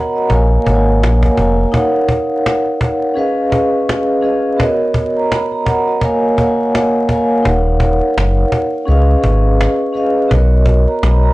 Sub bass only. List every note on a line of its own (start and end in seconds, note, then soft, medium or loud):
0.30 0.58 A#1 loud
0.67 1.04 G#1 medium
1.03 1.30 A#1 loud
1.38 1.66 F1 medium
7.46 8.01 D#1 loud
8.17 8.45 F#1 loud
8.88 9.16 C#2 loud
9.24 9.67 G#1 loud
10.31 10.87 B1 loud
11.03 11.30 B1 loud